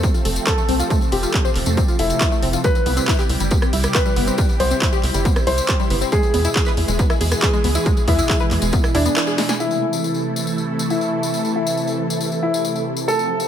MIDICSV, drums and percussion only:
0, 0, Header, 1, 2, 480
1, 0, Start_track
1, 0, Key_signature, 0, "minor"
1, 0, Tempo, 434783
1, 998, Time_signature, 4, 2, 24, 8
1, 14881, End_track
2, 0, Start_track
2, 0, Title_t, "Drums"
2, 37, Note_on_c, 9, 42, 49
2, 38, Note_on_c, 9, 36, 127
2, 45, Note_on_c, 9, 54, 69
2, 147, Note_off_c, 9, 42, 0
2, 148, Note_off_c, 9, 36, 0
2, 156, Note_off_c, 9, 54, 0
2, 158, Note_on_c, 9, 42, 26
2, 161, Note_on_c, 9, 54, 43
2, 268, Note_off_c, 9, 42, 0
2, 271, Note_off_c, 9, 54, 0
2, 278, Note_on_c, 9, 46, 119
2, 388, Note_off_c, 9, 46, 0
2, 397, Note_on_c, 9, 42, 51
2, 398, Note_on_c, 9, 54, 86
2, 508, Note_off_c, 9, 42, 0
2, 509, Note_off_c, 9, 54, 0
2, 518, Note_on_c, 9, 36, 119
2, 518, Note_on_c, 9, 39, 118
2, 518, Note_on_c, 9, 42, 47
2, 521, Note_on_c, 9, 54, 69
2, 628, Note_off_c, 9, 36, 0
2, 628, Note_off_c, 9, 39, 0
2, 628, Note_off_c, 9, 42, 0
2, 631, Note_off_c, 9, 54, 0
2, 638, Note_on_c, 9, 42, 25
2, 640, Note_on_c, 9, 54, 41
2, 749, Note_off_c, 9, 42, 0
2, 750, Note_off_c, 9, 54, 0
2, 757, Note_on_c, 9, 46, 99
2, 868, Note_off_c, 9, 46, 0
2, 878, Note_on_c, 9, 42, 50
2, 884, Note_on_c, 9, 54, 82
2, 988, Note_off_c, 9, 42, 0
2, 994, Note_off_c, 9, 54, 0
2, 998, Note_on_c, 9, 36, 127
2, 998, Note_on_c, 9, 42, 48
2, 1004, Note_on_c, 9, 54, 69
2, 1108, Note_off_c, 9, 36, 0
2, 1108, Note_off_c, 9, 42, 0
2, 1114, Note_off_c, 9, 54, 0
2, 1117, Note_on_c, 9, 42, 26
2, 1127, Note_on_c, 9, 54, 37
2, 1228, Note_off_c, 9, 42, 0
2, 1237, Note_off_c, 9, 54, 0
2, 1238, Note_on_c, 9, 46, 100
2, 1348, Note_off_c, 9, 46, 0
2, 1357, Note_on_c, 9, 42, 52
2, 1359, Note_on_c, 9, 54, 71
2, 1468, Note_off_c, 9, 42, 0
2, 1470, Note_off_c, 9, 54, 0
2, 1474, Note_on_c, 9, 54, 61
2, 1478, Note_on_c, 9, 36, 117
2, 1478, Note_on_c, 9, 39, 108
2, 1478, Note_on_c, 9, 42, 44
2, 1584, Note_off_c, 9, 54, 0
2, 1588, Note_off_c, 9, 36, 0
2, 1588, Note_off_c, 9, 39, 0
2, 1588, Note_off_c, 9, 42, 0
2, 1598, Note_on_c, 9, 42, 24
2, 1601, Note_on_c, 9, 54, 41
2, 1708, Note_off_c, 9, 42, 0
2, 1712, Note_off_c, 9, 54, 0
2, 1717, Note_on_c, 9, 39, 33
2, 1717, Note_on_c, 9, 46, 88
2, 1828, Note_off_c, 9, 39, 0
2, 1828, Note_off_c, 9, 46, 0
2, 1833, Note_on_c, 9, 54, 80
2, 1837, Note_on_c, 9, 42, 53
2, 1943, Note_off_c, 9, 54, 0
2, 1948, Note_off_c, 9, 42, 0
2, 1957, Note_on_c, 9, 42, 50
2, 1958, Note_on_c, 9, 36, 127
2, 1962, Note_on_c, 9, 54, 68
2, 2067, Note_off_c, 9, 42, 0
2, 2068, Note_off_c, 9, 36, 0
2, 2073, Note_off_c, 9, 54, 0
2, 2077, Note_on_c, 9, 42, 24
2, 2079, Note_on_c, 9, 54, 39
2, 2188, Note_off_c, 9, 42, 0
2, 2189, Note_off_c, 9, 54, 0
2, 2197, Note_on_c, 9, 46, 110
2, 2307, Note_off_c, 9, 46, 0
2, 2317, Note_on_c, 9, 42, 52
2, 2322, Note_on_c, 9, 54, 78
2, 2428, Note_off_c, 9, 42, 0
2, 2433, Note_off_c, 9, 54, 0
2, 2437, Note_on_c, 9, 39, 112
2, 2437, Note_on_c, 9, 42, 46
2, 2438, Note_on_c, 9, 36, 119
2, 2439, Note_on_c, 9, 54, 74
2, 2547, Note_off_c, 9, 39, 0
2, 2547, Note_off_c, 9, 42, 0
2, 2548, Note_off_c, 9, 36, 0
2, 2549, Note_off_c, 9, 54, 0
2, 2557, Note_on_c, 9, 42, 23
2, 2562, Note_on_c, 9, 54, 37
2, 2668, Note_off_c, 9, 42, 0
2, 2672, Note_off_c, 9, 54, 0
2, 2677, Note_on_c, 9, 46, 97
2, 2788, Note_off_c, 9, 46, 0
2, 2794, Note_on_c, 9, 54, 80
2, 2797, Note_on_c, 9, 42, 48
2, 2904, Note_off_c, 9, 54, 0
2, 2908, Note_off_c, 9, 42, 0
2, 2914, Note_on_c, 9, 54, 64
2, 2917, Note_on_c, 9, 42, 48
2, 2918, Note_on_c, 9, 36, 121
2, 3025, Note_off_c, 9, 54, 0
2, 3027, Note_off_c, 9, 42, 0
2, 3028, Note_off_c, 9, 36, 0
2, 3037, Note_on_c, 9, 42, 26
2, 3037, Note_on_c, 9, 54, 39
2, 3148, Note_off_c, 9, 42, 0
2, 3148, Note_off_c, 9, 54, 0
2, 3157, Note_on_c, 9, 46, 94
2, 3268, Note_off_c, 9, 46, 0
2, 3277, Note_on_c, 9, 42, 53
2, 3280, Note_on_c, 9, 54, 73
2, 3388, Note_off_c, 9, 42, 0
2, 3391, Note_off_c, 9, 54, 0
2, 3397, Note_on_c, 9, 39, 107
2, 3397, Note_on_c, 9, 42, 45
2, 3398, Note_on_c, 9, 36, 115
2, 3398, Note_on_c, 9, 54, 69
2, 3508, Note_off_c, 9, 39, 0
2, 3508, Note_off_c, 9, 42, 0
2, 3509, Note_off_c, 9, 36, 0
2, 3509, Note_off_c, 9, 54, 0
2, 3518, Note_on_c, 9, 39, 33
2, 3518, Note_on_c, 9, 42, 25
2, 3522, Note_on_c, 9, 54, 40
2, 3628, Note_off_c, 9, 39, 0
2, 3628, Note_off_c, 9, 42, 0
2, 3632, Note_off_c, 9, 54, 0
2, 3637, Note_on_c, 9, 46, 90
2, 3748, Note_off_c, 9, 46, 0
2, 3755, Note_on_c, 9, 54, 82
2, 3757, Note_on_c, 9, 42, 51
2, 3866, Note_off_c, 9, 54, 0
2, 3868, Note_off_c, 9, 42, 0
2, 3871, Note_on_c, 9, 54, 67
2, 3877, Note_on_c, 9, 42, 51
2, 3878, Note_on_c, 9, 36, 124
2, 3981, Note_off_c, 9, 54, 0
2, 3988, Note_off_c, 9, 42, 0
2, 3989, Note_off_c, 9, 36, 0
2, 3998, Note_on_c, 9, 37, 81
2, 3998, Note_on_c, 9, 42, 24
2, 4001, Note_on_c, 9, 54, 35
2, 4108, Note_off_c, 9, 37, 0
2, 4108, Note_off_c, 9, 42, 0
2, 4112, Note_off_c, 9, 54, 0
2, 4117, Note_on_c, 9, 46, 103
2, 4228, Note_off_c, 9, 46, 0
2, 4233, Note_on_c, 9, 54, 71
2, 4237, Note_on_c, 9, 37, 83
2, 4237, Note_on_c, 9, 42, 50
2, 4344, Note_off_c, 9, 54, 0
2, 4348, Note_off_c, 9, 37, 0
2, 4348, Note_off_c, 9, 42, 0
2, 4357, Note_on_c, 9, 39, 107
2, 4357, Note_on_c, 9, 42, 51
2, 4358, Note_on_c, 9, 36, 113
2, 4359, Note_on_c, 9, 54, 75
2, 4467, Note_off_c, 9, 39, 0
2, 4467, Note_off_c, 9, 42, 0
2, 4468, Note_off_c, 9, 36, 0
2, 4470, Note_off_c, 9, 54, 0
2, 4477, Note_on_c, 9, 42, 23
2, 4477, Note_on_c, 9, 54, 37
2, 4587, Note_off_c, 9, 54, 0
2, 4588, Note_off_c, 9, 42, 0
2, 4597, Note_on_c, 9, 46, 93
2, 4707, Note_off_c, 9, 46, 0
2, 4717, Note_on_c, 9, 42, 48
2, 4721, Note_on_c, 9, 54, 69
2, 4828, Note_off_c, 9, 42, 0
2, 4831, Note_off_c, 9, 54, 0
2, 4833, Note_on_c, 9, 54, 66
2, 4838, Note_on_c, 9, 36, 121
2, 4838, Note_on_c, 9, 42, 50
2, 4943, Note_off_c, 9, 54, 0
2, 4948, Note_off_c, 9, 36, 0
2, 4948, Note_off_c, 9, 42, 0
2, 4958, Note_on_c, 9, 42, 27
2, 4961, Note_on_c, 9, 54, 36
2, 5068, Note_off_c, 9, 42, 0
2, 5071, Note_off_c, 9, 54, 0
2, 5078, Note_on_c, 9, 46, 94
2, 5188, Note_off_c, 9, 46, 0
2, 5198, Note_on_c, 9, 42, 52
2, 5202, Note_on_c, 9, 54, 71
2, 5309, Note_off_c, 9, 42, 0
2, 5313, Note_off_c, 9, 54, 0
2, 5318, Note_on_c, 9, 36, 109
2, 5318, Note_on_c, 9, 39, 107
2, 5318, Note_on_c, 9, 42, 49
2, 5319, Note_on_c, 9, 54, 61
2, 5428, Note_off_c, 9, 36, 0
2, 5429, Note_off_c, 9, 39, 0
2, 5429, Note_off_c, 9, 42, 0
2, 5429, Note_off_c, 9, 54, 0
2, 5438, Note_on_c, 9, 42, 26
2, 5439, Note_on_c, 9, 54, 36
2, 5549, Note_off_c, 9, 42, 0
2, 5549, Note_off_c, 9, 54, 0
2, 5558, Note_on_c, 9, 39, 33
2, 5558, Note_on_c, 9, 46, 85
2, 5669, Note_off_c, 9, 39, 0
2, 5669, Note_off_c, 9, 46, 0
2, 5678, Note_on_c, 9, 42, 57
2, 5680, Note_on_c, 9, 54, 73
2, 5789, Note_off_c, 9, 42, 0
2, 5790, Note_off_c, 9, 54, 0
2, 5797, Note_on_c, 9, 54, 66
2, 5798, Note_on_c, 9, 36, 120
2, 5798, Note_on_c, 9, 42, 52
2, 5908, Note_off_c, 9, 36, 0
2, 5908, Note_off_c, 9, 54, 0
2, 5909, Note_off_c, 9, 42, 0
2, 5917, Note_on_c, 9, 54, 38
2, 5918, Note_on_c, 9, 37, 81
2, 5918, Note_on_c, 9, 42, 26
2, 6027, Note_off_c, 9, 54, 0
2, 6029, Note_off_c, 9, 37, 0
2, 6029, Note_off_c, 9, 42, 0
2, 6038, Note_on_c, 9, 46, 100
2, 6148, Note_off_c, 9, 46, 0
2, 6158, Note_on_c, 9, 42, 53
2, 6158, Note_on_c, 9, 54, 77
2, 6268, Note_off_c, 9, 42, 0
2, 6268, Note_off_c, 9, 54, 0
2, 6275, Note_on_c, 9, 54, 63
2, 6277, Note_on_c, 9, 37, 76
2, 6277, Note_on_c, 9, 39, 111
2, 6277, Note_on_c, 9, 42, 50
2, 6278, Note_on_c, 9, 36, 111
2, 6385, Note_off_c, 9, 54, 0
2, 6388, Note_off_c, 9, 36, 0
2, 6388, Note_off_c, 9, 37, 0
2, 6388, Note_off_c, 9, 39, 0
2, 6388, Note_off_c, 9, 42, 0
2, 6398, Note_on_c, 9, 42, 25
2, 6399, Note_on_c, 9, 54, 35
2, 6508, Note_off_c, 9, 42, 0
2, 6509, Note_off_c, 9, 54, 0
2, 6518, Note_on_c, 9, 46, 91
2, 6628, Note_off_c, 9, 46, 0
2, 6638, Note_on_c, 9, 42, 49
2, 6642, Note_on_c, 9, 54, 72
2, 6748, Note_off_c, 9, 42, 0
2, 6753, Note_off_c, 9, 54, 0
2, 6758, Note_on_c, 9, 36, 118
2, 6758, Note_on_c, 9, 42, 54
2, 6764, Note_on_c, 9, 54, 59
2, 6868, Note_off_c, 9, 36, 0
2, 6868, Note_off_c, 9, 42, 0
2, 6875, Note_off_c, 9, 54, 0
2, 6878, Note_on_c, 9, 42, 27
2, 6879, Note_on_c, 9, 54, 35
2, 6988, Note_off_c, 9, 42, 0
2, 6990, Note_off_c, 9, 54, 0
2, 6997, Note_on_c, 9, 46, 94
2, 7108, Note_off_c, 9, 46, 0
2, 7117, Note_on_c, 9, 42, 55
2, 7117, Note_on_c, 9, 54, 75
2, 7228, Note_off_c, 9, 42, 0
2, 7228, Note_off_c, 9, 54, 0
2, 7237, Note_on_c, 9, 39, 110
2, 7237, Note_on_c, 9, 42, 52
2, 7238, Note_on_c, 9, 36, 108
2, 7246, Note_on_c, 9, 54, 60
2, 7348, Note_off_c, 9, 36, 0
2, 7348, Note_off_c, 9, 39, 0
2, 7348, Note_off_c, 9, 42, 0
2, 7349, Note_off_c, 9, 54, 0
2, 7349, Note_on_c, 9, 54, 36
2, 7357, Note_on_c, 9, 39, 36
2, 7357, Note_on_c, 9, 42, 27
2, 7460, Note_off_c, 9, 54, 0
2, 7468, Note_off_c, 9, 39, 0
2, 7468, Note_off_c, 9, 42, 0
2, 7477, Note_on_c, 9, 46, 83
2, 7587, Note_off_c, 9, 46, 0
2, 7597, Note_on_c, 9, 42, 54
2, 7598, Note_on_c, 9, 54, 78
2, 7707, Note_off_c, 9, 42, 0
2, 7709, Note_off_c, 9, 54, 0
2, 7717, Note_on_c, 9, 42, 54
2, 7718, Note_on_c, 9, 36, 117
2, 7718, Note_on_c, 9, 54, 60
2, 7827, Note_off_c, 9, 42, 0
2, 7828, Note_off_c, 9, 36, 0
2, 7828, Note_off_c, 9, 54, 0
2, 7837, Note_on_c, 9, 37, 77
2, 7837, Note_on_c, 9, 42, 26
2, 7837, Note_on_c, 9, 54, 35
2, 7947, Note_off_c, 9, 37, 0
2, 7947, Note_off_c, 9, 42, 0
2, 7948, Note_off_c, 9, 54, 0
2, 7957, Note_on_c, 9, 46, 103
2, 8067, Note_off_c, 9, 46, 0
2, 8077, Note_on_c, 9, 37, 82
2, 8077, Note_on_c, 9, 42, 55
2, 8077, Note_on_c, 9, 54, 81
2, 8187, Note_off_c, 9, 37, 0
2, 8187, Note_off_c, 9, 42, 0
2, 8188, Note_off_c, 9, 54, 0
2, 8195, Note_on_c, 9, 54, 60
2, 8197, Note_on_c, 9, 39, 108
2, 8197, Note_on_c, 9, 42, 56
2, 8198, Note_on_c, 9, 36, 110
2, 8306, Note_off_c, 9, 54, 0
2, 8307, Note_off_c, 9, 39, 0
2, 8307, Note_off_c, 9, 42, 0
2, 8308, Note_off_c, 9, 36, 0
2, 8317, Note_on_c, 9, 42, 28
2, 8317, Note_on_c, 9, 54, 35
2, 8427, Note_off_c, 9, 42, 0
2, 8428, Note_off_c, 9, 54, 0
2, 8437, Note_on_c, 9, 46, 92
2, 8547, Note_off_c, 9, 46, 0
2, 8555, Note_on_c, 9, 54, 79
2, 8557, Note_on_c, 9, 42, 51
2, 8666, Note_off_c, 9, 54, 0
2, 8667, Note_off_c, 9, 42, 0
2, 8677, Note_on_c, 9, 36, 116
2, 8677, Note_on_c, 9, 42, 50
2, 8682, Note_on_c, 9, 54, 62
2, 8787, Note_off_c, 9, 42, 0
2, 8788, Note_off_c, 9, 36, 0
2, 8792, Note_off_c, 9, 54, 0
2, 8797, Note_on_c, 9, 42, 29
2, 8799, Note_on_c, 9, 54, 40
2, 8907, Note_off_c, 9, 42, 0
2, 8909, Note_off_c, 9, 54, 0
2, 8916, Note_on_c, 9, 46, 102
2, 8917, Note_on_c, 9, 36, 62
2, 9027, Note_off_c, 9, 46, 0
2, 9028, Note_off_c, 9, 36, 0
2, 9037, Note_on_c, 9, 42, 54
2, 9040, Note_on_c, 9, 54, 73
2, 9147, Note_off_c, 9, 42, 0
2, 9150, Note_off_c, 9, 54, 0
2, 9157, Note_on_c, 9, 36, 109
2, 9157, Note_on_c, 9, 39, 108
2, 9157, Note_on_c, 9, 42, 54
2, 9160, Note_on_c, 9, 54, 57
2, 9267, Note_off_c, 9, 39, 0
2, 9267, Note_off_c, 9, 42, 0
2, 9268, Note_off_c, 9, 36, 0
2, 9269, Note_off_c, 9, 54, 0
2, 9269, Note_on_c, 9, 54, 34
2, 9277, Note_on_c, 9, 42, 25
2, 9380, Note_off_c, 9, 54, 0
2, 9387, Note_off_c, 9, 42, 0
2, 9397, Note_on_c, 9, 39, 35
2, 9397, Note_on_c, 9, 46, 83
2, 9507, Note_off_c, 9, 39, 0
2, 9507, Note_off_c, 9, 46, 0
2, 9513, Note_on_c, 9, 54, 83
2, 9517, Note_on_c, 9, 42, 60
2, 9623, Note_off_c, 9, 54, 0
2, 9627, Note_off_c, 9, 42, 0
2, 9632, Note_on_c, 9, 54, 62
2, 9637, Note_on_c, 9, 36, 119
2, 9637, Note_on_c, 9, 42, 56
2, 9742, Note_off_c, 9, 54, 0
2, 9747, Note_off_c, 9, 42, 0
2, 9748, Note_off_c, 9, 36, 0
2, 9757, Note_on_c, 9, 37, 76
2, 9757, Note_on_c, 9, 42, 28
2, 9762, Note_on_c, 9, 54, 38
2, 9868, Note_off_c, 9, 37, 0
2, 9868, Note_off_c, 9, 42, 0
2, 9872, Note_off_c, 9, 54, 0
2, 9877, Note_on_c, 9, 46, 104
2, 9987, Note_off_c, 9, 46, 0
2, 9997, Note_on_c, 9, 42, 58
2, 10000, Note_on_c, 9, 54, 75
2, 10107, Note_off_c, 9, 42, 0
2, 10110, Note_off_c, 9, 54, 0
2, 10117, Note_on_c, 9, 37, 74
2, 10117, Note_on_c, 9, 39, 115
2, 10117, Note_on_c, 9, 42, 55
2, 10118, Note_on_c, 9, 54, 67
2, 10227, Note_off_c, 9, 37, 0
2, 10227, Note_off_c, 9, 39, 0
2, 10227, Note_off_c, 9, 42, 0
2, 10228, Note_off_c, 9, 54, 0
2, 10232, Note_on_c, 9, 54, 34
2, 10237, Note_on_c, 9, 42, 28
2, 10342, Note_off_c, 9, 54, 0
2, 10347, Note_off_c, 9, 42, 0
2, 10357, Note_on_c, 9, 38, 64
2, 10357, Note_on_c, 9, 46, 90
2, 10468, Note_off_c, 9, 38, 0
2, 10468, Note_off_c, 9, 46, 0
2, 10477, Note_on_c, 9, 38, 70
2, 10477, Note_on_c, 9, 42, 50
2, 10477, Note_on_c, 9, 54, 73
2, 10587, Note_off_c, 9, 54, 0
2, 10588, Note_off_c, 9, 38, 0
2, 10588, Note_off_c, 9, 42, 0
2, 10600, Note_on_c, 9, 54, 65
2, 10710, Note_off_c, 9, 54, 0
2, 10716, Note_on_c, 9, 54, 39
2, 10827, Note_off_c, 9, 54, 0
2, 10962, Note_on_c, 9, 54, 73
2, 11072, Note_off_c, 9, 54, 0
2, 11086, Note_on_c, 9, 54, 57
2, 11197, Note_off_c, 9, 54, 0
2, 11199, Note_on_c, 9, 54, 39
2, 11309, Note_off_c, 9, 54, 0
2, 11440, Note_on_c, 9, 54, 83
2, 11550, Note_off_c, 9, 54, 0
2, 11558, Note_on_c, 9, 54, 64
2, 11668, Note_off_c, 9, 54, 0
2, 11682, Note_on_c, 9, 54, 38
2, 11792, Note_off_c, 9, 54, 0
2, 11915, Note_on_c, 9, 54, 78
2, 12026, Note_off_c, 9, 54, 0
2, 12036, Note_on_c, 9, 54, 58
2, 12146, Note_off_c, 9, 54, 0
2, 12156, Note_on_c, 9, 54, 35
2, 12266, Note_off_c, 9, 54, 0
2, 12399, Note_on_c, 9, 54, 72
2, 12509, Note_off_c, 9, 54, 0
2, 12516, Note_on_c, 9, 54, 59
2, 12627, Note_off_c, 9, 54, 0
2, 12637, Note_on_c, 9, 54, 37
2, 12748, Note_off_c, 9, 54, 0
2, 12879, Note_on_c, 9, 54, 78
2, 12989, Note_off_c, 9, 54, 0
2, 12998, Note_on_c, 9, 54, 55
2, 13108, Note_off_c, 9, 54, 0
2, 13108, Note_on_c, 9, 54, 39
2, 13219, Note_off_c, 9, 54, 0
2, 13360, Note_on_c, 9, 54, 81
2, 13471, Note_off_c, 9, 54, 0
2, 13475, Note_on_c, 9, 54, 66
2, 13585, Note_off_c, 9, 54, 0
2, 13598, Note_on_c, 9, 54, 39
2, 13708, Note_off_c, 9, 54, 0
2, 13843, Note_on_c, 9, 54, 79
2, 13954, Note_off_c, 9, 54, 0
2, 13962, Note_on_c, 9, 54, 72
2, 14072, Note_off_c, 9, 54, 0
2, 14081, Note_on_c, 9, 54, 36
2, 14191, Note_off_c, 9, 54, 0
2, 14314, Note_on_c, 9, 54, 79
2, 14424, Note_off_c, 9, 54, 0
2, 14443, Note_on_c, 9, 54, 65
2, 14553, Note_off_c, 9, 54, 0
2, 14564, Note_on_c, 9, 54, 40
2, 14674, Note_off_c, 9, 54, 0
2, 14791, Note_on_c, 9, 54, 73
2, 14881, Note_off_c, 9, 54, 0
2, 14881, End_track
0, 0, End_of_file